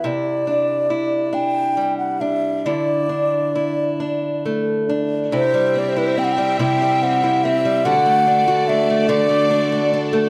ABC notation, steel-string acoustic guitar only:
X:1
M:6/8
L:1/16
Q:3/8=47
K:Clyd
V:1 name="Steel-string acoustic guitar"
[C,E]2 D2 E2 D2 G,2 D2 | [D,E]2 D2 E2 D2 A,2 D2 | [C,E] G, C E C G, [C,E] G, C E C G, | [D,F] A, D F D A, [D,F] A, D F D A, |]